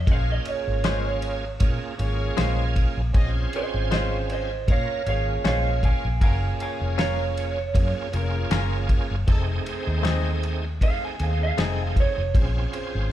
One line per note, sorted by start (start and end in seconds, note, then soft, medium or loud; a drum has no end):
0.00 0.11 D#5 medium
0.07 0.38 A#1 loud
0.07 1.44 A#3 medium
0.07 1.44 C#4 medium
0.07 0.23 C#4 medium
0.07 1.45 F4 medium
0.07 1.45 G#4 medium
0.07 0.24 G#4 medium
0.07 0.26 C5 medium
0.07 kick loud
0.07 ride medium
0.11 0.30 F5 medium
0.32 0.48 D#5 medium
0.45 1.23 G#4 medium
0.45 1.23 C#5 medium
0.45 2.73 C#5 medium
0.45 ride medium
0.67 1.62 G#1 medium
0.84 1.09 G#3 medium
0.84 1.09 C#4 medium
0.84 1.09 F4 medium
0.84 1.10 C5 medium
0.84 snare loud
0.84 ride medium
1.22 ride medium
1.60 1.78 A#2 loud
1.60 1.95 A#3 medium
1.60 1.95 C#4 medium
1.60 1.95 F4 medium
1.60 1.95 G#4 loud
1.60 kick medium
1.60 ride medium
1.98 2.30 G#1 medium
1.98 3.02 A#3 medium
1.98 3.02 C#4 medium
1.98 3.02 F4 medium
1.98 2.59 G#4 medium
1.98 3.02 G#4 medium
1.98 2.59 C#5 loud
1.98 ride medium
2.37 2.85 A#1 medium
2.37 2.62 G#3 medium
2.37 2.62 C#4 medium
2.37 2.63 F4 medium
2.37 2.63 C5 loud
2.37 snare loud
2.37 ride medium
2.76 kick medium
2.76 ride medium
2.97 3.11 A#1 medium
3.13 3.45 A#1 medium
3.13 4.51 C4 medium
3.13 3.29 C#4 medium
3.13 4.51 C#4 medium
3.13 4.52 F4 medium
3.13 3.30 G#4 medium
3.13 4.52 G#4 loud
3.13 3.31 D#5 loud
3.13 kick loud
3.13 ride medium
3.53 4.30 G#4 medium
3.53 4.30 C5 medium
3.53 3.92 C5 medium
3.53 3.92 D#5 medium
3.53 ride medium
3.74 4.70 G#1 medium
3.91 4.16 G#3 medium
3.91 4.16 C#4 medium
3.91 4.17 F4 medium
3.91 4.17 C5 medium
3.91 4.28 C5 medium
3.91 4.30 D#5 medium
3.91 snare loud
3.91 ride medium
4.30 4.67 C5 medium
4.30 4.68 D#5 medium
4.30 ride medium
4.67 4.85 A#2 loud
4.67 5.02 A#3 medium
4.67 5.02 C#4 medium
4.67 5.02 F4 medium
4.67 5.03 A#4 medium
4.67 5.05 C#5 medium
4.67 kick medium
4.67 ride medium
4.72 5.07 F5 medium
5.06 5.37 G#1 medium
5.06 6.09 A#3 medium
5.06 6.09 C#4 medium
5.06 6.09 F4 medium
5.06 5.66 G#4 medium
5.06 6.10 G#4 medium
5.06 5.66 C#5 medium
5.06 5.43 C#5 medium
5.06 5.45 F5 medium
5.06 ride medium
5.45 5.92 A#1 medium
5.45 5.69 G#3 medium
5.45 5.69 C#4 medium
5.45 5.70 F4 medium
5.45 5.70 C5 medium
5.45 5.81 C#5 medium
5.45 5.83 F5 medium
5.45 snare loud
5.45 ride medium
5.83 6.19 F5 medium
5.83 6.21 G#5 medium
5.83 kick medium
5.83 ride medium
6.05 6.18 A#1 medium
6.19 6.52 F#1 loud
6.19 7.58 A#3 medium
6.19 7.58 C#4 medium
6.19 6.35 F4 medium
6.19 7.59 F4 medium
6.19 6.37 F#4 medium
6.19 7.59 G#4 medium
6.19 6.37 A#4 medium
6.19 kick loud
6.19 ride medium
6.24 6.58 F5 medium
6.24 6.60 G#5 medium
6.59 7.36 F4 medium
6.59 7.37 C#5 medium
6.59 6.96 F5 medium
6.59 6.98 G#5 medium
6.59 ride medium
6.81 7.76 F1 medium
6.98 7.23 C#4 medium
6.98 7.23 F4 medium
6.98 7.24 A#4 medium
6.98 9.25 C#5 medium
6.98 snare loud
6.98 ride medium
7.37 ride medium
7.74 7.92 F#2 loud
7.74 8.08 A#3 medium
7.74 8.09 C#4 medium
7.74 8.09 F4 medium
7.74 8.09 G#4 medium
7.74 kick medium
7.74 ride medium
8.12 8.44 F1 medium
8.12 9.15 A#3 medium
8.12 9.16 C#4 medium
8.12 8.72 F4 medium
8.12 9.16 F4 medium
8.12 9.16 G#4 medium
8.12 8.73 A#4 loud
8.12 ride medium
8.51 8.99 F#1 medium
8.51 8.76 C#4 medium
8.51 8.76 F4 loud
8.51 8.77 A#4 loud
8.51 snare loud
8.51 ride medium
8.89 kick medium
8.89 ride medium
9.11 9.24 F#1 medium
9.27 9.58 F1 loud
9.27 10.64 A3 medium
9.27 10.65 C4 medium
9.27 9.43 D#4 medium
9.27 10.65 D#4 medium
9.27 9.43 G#4 medium
9.27 10.65 G#4 loud
9.27 9.44 A4 loud
9.27 kick loud
9.27 ride medium
9.66 10.43 D#4 medium
9.66 10.43 G#4 medium
9.66 10.44 C5 loud
9.66 ride medium
9.87 10.81 D#2 medium
10.03 10.29 A3 loud
10.03 10.29 C4 loud
10.03 10.29 D#4 loud
10.03 10.30 G#4 loud
10.03 snare loud
10.03 ride medium
10.43 ride medium
10.81 10.98 F2 loud
10.81 11.15 A3 medium
10.81 11.16 C4 medium
10.81 11.16 D#4 medium
10.81 11.16 G#4 medium
10.81 11.03 F5 medium
10.81 kick medium
10.81 ride medium
11.05 11.23 G#5 medium
11.19 11.50 D#2 medium
11.19 12.22 A3 medium
11.19 12.23 C4 medium
11.19 11.79 D#4 medium
11.19 12.23 D#4 medium
11.19 11.79 G#4 medium
11.19 12.23 G#4 medium
11.19 11.42 F5 medium
11.19 ride medium
11.43 11.59 F5 medium
11.58 12.05 F1 medium
11.58 11.83 A3 medium
11.58 11.83 C4 medium
11.58 11.83 D#4 medium
11.58 11.83 G#4 medium
11.58 11.82 G#5 medium
11.58 snare loud
11.58 ride medium
11.82 11.97 F5 loud
11.96 12.35 C#5 medium
11.96 kick medium
11.96 ride medium
12.18 12.31 F1 medium
12.34 12.65 A#1 loud
12.34 13.12 C4 medium
12.34 12.50 C#4 medium
12.34 13.12 C#4 medium
12.34 13.12 F4 medium
12.34 12.51 G#4 medium
12.34 13.12 G#4 medium
12.34 12.52 C5 medium
12.34 kick loud
12.34 ride medium
12.73 13.12 G#4 medium
12.73 13.12 C5 loud
12.73 ride medium
12.95 13.12 G#1 medium